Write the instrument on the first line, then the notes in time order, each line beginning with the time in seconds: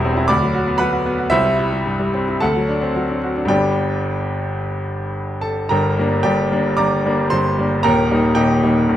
grand piano
Already playing: E1 E2 E3 G3 E4 G4 E5 G5
0.05 C4
0.17 E4
0.28 D2 D5 B5 D6
0.42 F#3
0.54 F#4
0.67 B3
0.78 F#3 B4 F#5 B5
0.93 F#4
1.06 B3
1.18 F#4
1.30 C2 E4 C5 E5
1.45 G3
1.59 E4
1.73 G3
1.86 G2
2.00 G3
2.14 C4
2.29 E4
2.40 D2 A4 F#5 A5
2.56 F#3
2.69 D4
2.82 C4
2.96 F#3
3.10 D4
3.24 F#4
3.37 D4
3.45 G2 G3 B3 D4 G5
3.49 G1 G4 D5
5.41 A4 A5
5.69 G1 G2 A#4 G5 A#5
5.99 G3 A#3 D4
6.23 G1 G2 G4 D5 G5
6.52 G3 A#3 D4
6.77 G1 G2 D5 A#5 D6
7.06 G3 A#3 D4
7.30 G1 G2 C5 C6
7.59 G3 A#3 D4
7.83 D#1 D#2 A#4 G5 A#5
8.11 G3 A#3 D#4
8.35 D#1 D#2 G4 D#5 G5
8.63 G3 A#3 D#4
8.89 D#1 D#2